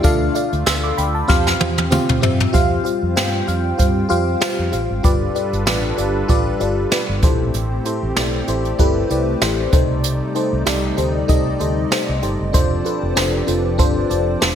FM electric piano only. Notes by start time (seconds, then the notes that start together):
0.03 D3 D4 F4 A4 D5 F5
0.34 D4 F4 A4 D5 F5
0.66 C6 E6
0.83 B5 D6
0.97 G5 B5
1.14 F5 A5
1.28 C4 F4 G4 C5 F5
1.59 C4 F4 G4 C5 F5
1.90 C4 F4 G4 C5 F5
2.21 C4 F4 G4 C5 E5
2.53 F4 G4 C5 F5
2.84 F4 G4 C5 F5
3.16 F4 G4 C5 G5
3.47 F4 G4 C5 F5
3.78 F4 G4 C5 F5
4.09 F4 G4 C5 F5
4.41 F4 G4 C5 F5
4.72 F4 G4 C5 F5
5.03 G2 F4 G4 B4 D5
5.35 F4 G4 B4 D5
5.66 F4 G4 B4 D5
5.97 F4 G4 B4 D5
6.28 F4 G4 B4 D5
6.60 F4 G4 B4 D5
6.91 F4 G4 B4 D5
7.23 A2 E4 G4 A4 C5
7.85 E4 G4 A4 C5
8.16 E4 G4 A4 D5
8.48 E4 G4 A4 C5
8.79 E4 G4 A4 B4
9.10 E4 G4 A4 D5
9.41 E4 G4 A4 C5
9.72 C3 D#4 G4 A4 C5
10.35 D#4 G4 A4 C5
10.66 D#4 G4 A4 D5
10.97 D#4 G4 A4 C5
11.28 D#4 G4 A4 D#5
11.59 D#4 G4 A4 C5
11.91 D#4 G4 A4 C5
12.22 D#4 G4 A4 C5
12.53 D4 F4 A4 C5
12.84 D4 F4 A4 B4
13.15 D4 F4 A4 C5
13.47 D4 F4 A4 C5
13.78 D4 F4 A4 C5
14.09 D4 F4 A4 D5
14.40 D4 F4 A4 C5